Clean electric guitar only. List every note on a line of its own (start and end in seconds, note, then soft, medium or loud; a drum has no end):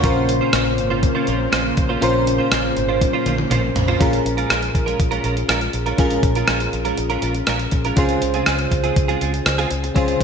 0.03 0.26 A#3 medium
0.03 0.27 C#4 medium
0.03 0.27 F4 medium
0.03 0.27 C5 medium
0.29 muted clean electric guitar stroke soft
0.41 0.52 A#3 soft
0.41 0.53 C#4 soft
0.41 0.53 F4 soft
0.41 0.54 C5 medium
0.53 0.71 A#3 medium
0.53 0.66 C#4 medium
0.53 0.65 F4 medium
0.53 0.65 C5 medium
0.66 muted clean electric guitar stroke soft
0.78 muted clean electric guitar stroke soft
0.90 1.02 A#3 soft
0.90 1.02 C#4 medium
0.90 1.02 F4 medium
0.90 1.03 C5 medium
1.03 muted clean electric guitar stroke soft
1.15 1.26 A#3 medium
1.15 1.27 C#4 medium
1.15 1.27 F4 medium
1.15 1.28 C5 medium
1.27 1.42 A#3 medium
1.27 1.40 C#4 medium
1.27 1.39 F4 medium
1.27 1.39 C5 medium
1.40 muted clean electric guitar stroke soft
1.52 1.70 A#3 medium
1.52 1.65 C#4 medium
1.52 1.64 F4 medium
1.52 1.64 C5 medium
1.65 muted clean electric guitar stroke soft
1.77 muted clean electric guitar stroke soft
1.89 2.00 A#3 soft
1.89 2.01 C#4 medium
1.89 2.02 F4 medium
1.89 2.02 C5 medium
2.02 2.25 A#3 medium
2.02 2.25 C#4 medium
2.02 2.25 F4 medium
2.02 2.26 C5 medium
2.27 muted clean electric guitar stroke soft
2.38 2.50 A#3 soft
2.38 2.51 C#4 medium
2.38 2.51 F4 medium
2.38 2.52 C5 medium
2.51 2.69 A#3 medium
2.51 2.64 C#4 medium
2.51 2.63 F4 medium
2.51 2.63 C5 medium
2.64 muted clean electric guitar stroke soft
2.76 muted clean electric guitar stroke soft
2.89 3.00 A#3 soft
2.89 3.00 C#4 soft
2.89 3.00 F4 soft
2.89 3.01 C5 medium
3.01 muted clean electric guitar stroke soft
3.13 3.24 A#3 medium
3.13 3.25 C#4 medium
3.13 3.26 F4 medium
3.13 3.26 C5 medium
3.26 3.40 A#3 medium
3.26 3.39 C#4 medium
3.26 3.38 F4 medium
3.26 3.37 C5 medium
3.38 muted clean electric guitar stroke soft
3.50 3.69 A#3 medium
3.50 3.63 C#4 medium
3.50 3.63 F4 medium
3.50 3.62 C5 medium
3.63 muted clean electric guitar stroke soft
3.75 muted clean electric guitar stroke soft
3.88 4.00 A#3 soft
3.88 3.99 C#4 soft
3.88 4.00 F4 medium
3.88 4.01 C5 medium
4.00 4.23 G#3 medium
4.00 4.23 C#4 medium
4.00 4.24 F4 medium
4.00 4.24 A#4 medium
4.25 muted clean electric guitar stroke soft
4.37 4.48 G#3 soft
4.37 4.49 C#4 medium
4.37 4.50 F4 medium
4.37 4.50 A#4 medium
4.50 4.68 G#3 medium
4.50 4.62 C#4 medium
4.50 4.62 F4 medium
4.50 4.61 A#4 medium
4.62 muted clean electric guitar stroke soft
4.74 muted clean electric guitar stroke soft
4.86 4.98 G#3 soft
4.86 4.98 C#4 soft
4.86 4.98 F4 soft
4.86 4.99 A#4 medium
4.99 muted clean electric guitar stroke soft
5.11 5.22 G#3 medium
5.11 5.23 C#4 medium
5.11 5.24 F4 medium
5.11 5.24 A#4 medium
5.24 5.38 G#3 medium
5.24 5.36 C#4 medium
5.24 5.36 F4 medium
5.24 5.35 A#4 medium
5.36 muted clean electric guitar stroke soft
5.48 5.67 G#3 medium
5.48 5.61 C#4 medium
5.48 5.60 F4 medium
5.48 5.60 A#4 medium
5.61 muted clean electric guitar stroke soft
5.74 muted clean electric guitar stroke soft
5.86 5.97 G#3 soft
5.86 5.98 C#4 medium
5.86 5.99 F4 soft
5.86 5.99 A#4 medium
5.98 6.21 G#3 medium
5.98 6.22 C#4 medium
5.98 6.22 F4 medium
5.98 6.22 A#4 medium
6.24 muted clean electric guitar stroke soft
6.36 6.47 G#3 soft
6.36 6.48 C#4 soft
6.36 6.48 F4 medium
6.36 6.49 A#4 medium
6.48 6.66 G#3 medium
6.48 6.60 C#4 medium
6.48 6.60 F4 medium
6.48 6.59 A#4 medium
6.60 muted clean electric guitar stroke soft
6.73 muted clean electric guitar stroke soft
6.85 6.96 G#3 soft
6.85 6.97 C#4 medium
6.85 6.98 F4 medium
6.85 6.98 A#4 medium
6.98 muted clean electric guitar stroke soft
7.10 7.21 G#3 medium
7.10 7.22 C#4 medium
7.10 7.22 F4 medium
7.10 7.23 A#4 medium
7.22 7.36 G#3 medium
7.22 7.35 C#4 medium
7.22 7.34 F4 medium
7.22 7.33 A#4 medium
7.35 muted clean electric guitar stroke soft
7.47 7.65 G#3 medium
7.47 7.60 C#4 medium
7.47 7.59 F4 medium
7.47 7.58 A#4 medium
7.59 muted clean electric guitar stroke soft
7.72 muted clean electric guitar stroke soft
7.85 7.96 G#3 medium
7.85 7.97 C#4 medium
7.85 7.97 F4 medium
7.85 7.98 A#4 medium
7.97 8.20 G#3 medium
7.97 8.20 C4 medium
7.97 8.21 F4 medium
7.97 8.21 G#4 medium
8.22 muted clean electric guitar stroke soft
8.34 8.45 G#3 soft
8.34 8.46 C4 medium
8.34 8.46 F4 medium
8.34 8.47 G#4 medium
8.46 8.65 G#3 medium
8.46 8.59 C4 medium
8.46 8.59 F4 medium
8.46 8.58 G#4 medium
8.59 muted clean electric guitar stroke soft
8.72 muted clean electric guitar stroke soft
8.84 8.95 G#3 soft
8.84 8.95 C4 soft
8.84 8.96 F4 soft
8.84 8.96 G#4 medium
8.96 muted clean electric guitar stroke soft
9.08 9.20 G#3 medium
9.08 9.20 C4 medium
9.08 9.21 F4 medium
9.08 9.21 G#4 medium
9.21 9.35 G#3 medium
9.21 9.33 C4 medium
9.21 9.33 F4 medium
9.21 9.32 G#4 medium
9.33 muted clean electric guitar stroke soft
9.46 muted clean electric guitar stroke soft
9.58 9.69 G#3 medium
9.58 9.70 C4 medium
9.58 9.70 F4 medium
9.58 9.71 G#4 medium
9.71 muted clean electric guitar stroke soft
9.83 muted clean electric guitar stroke soft
9.96 10.18 G#3 medium
9.96 10.19 C4 medium
9.96 10.19 F4 medium
9.96 10.19 G#4 medium
10.21 muted clean electric guitar stroke soft